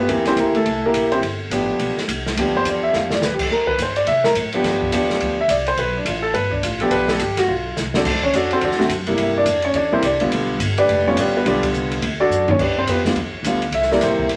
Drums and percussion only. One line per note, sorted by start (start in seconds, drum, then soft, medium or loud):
0.09 ride medium
0.25 snare soft
0.25 ride soft
0.37 hi-hat pedal soft
0.37 ride medium
0.55 ride soft
0.66 ride medium
0.94 hi-hat pedal medium
0.94 ride medium
1.12 ride soft
1.23 ride medium
1.51 hi-hat pedal medium
1.51 ride medium
1.79 ride medium
1.98 snare soft
2.09 hi-hat pedal medium
2.09 ride medium
2.26 snare medium
2.37 ride medium
2.65 hi-hat pedal medium
2.65 ride medium
2.93 snare soft
3.10 snare medium
3.22 snare medium
3.22 hi-hat pedal medium
3.39 kick medium
3.39 crash medium
3.67 kick medium
3.78 hi-hat pedal medium
3.78 ride medium
3.96 ride medium
4.07 ride medium
4.24 snare medium
4.35 hi-hat pedal medium
4.35 ride medium
4.53 ride soft
4.64 snare soft
4.64 ride medium
4.81 kick medium
4.92 hi-hat pedal medium
4.92 ride medium
5.10 snare soft
5.20 ride medium
5.49 hi-hat pedal medium
5.49 ride medium
5.67 ride soft
5.78 ride medium
6.06 hi-hat pedal medium
6.06 ride medium
6.34 ride medium
6.52 kick medium
6.63 hi-hat pedal medium
6.63 ride medium
6.80 ride soft
6.91 ride medium
7.08 snare medium
7.19 hi-hat pedal medium
7.19 ride medium
7.37 snare soft
7.37 ride medium
7.77 snare medium
7.77 hi-hat pedal medium
7.94 snare medium
8.05 kick medium
8.05 snare soft
8.05 crash medium
8.22 kick medium
8.33 hi-hat pedal medium
8.33 ride medium
8.51 ride soft
8.61 ride medium
8.71 snare soft
8.80 snare soft
8.89 hi-hat pedal medium
8.89 ride medium
9.07 ride medium
9.18 ride medium
9.46 hi-hat pedal medium
9.46 ride medium
9.62 ride soft
9.74 ride medium
10.02 hi-hat pedal medium
10.02 ride medium
10.20 ride medium
10.32 ride medium
10.60 hi-hat pedal medium
10.60 ride medium
10.78 ride medium
10.89 ride medium
11.17 hi-hat pedal medium
11.17 ride medium
11.46 ride medium
11.63 kick medium
11.63 ride medium
11.74 hi-hat pedal medium
11.92 ride medium
12.02 ride medium
12.31 hi-hat pedal medium
12.48 floor tom medium
12.59 kick medium
12.59 crash medium
12.87 hi-hat pedal medium
12.87 ride medium
13.05 snare medium
13.16 ride medium
13.44 hi-hat pedal medium
13.44 ride medium
13.62 ride soft
13.72 ride medium
13.82 snare soft
13.92 snare soft
14.01 snare soft
14.01 hi-hat pedal medium
14.01 ride medium
14.18 kick medium
14.29 ride medium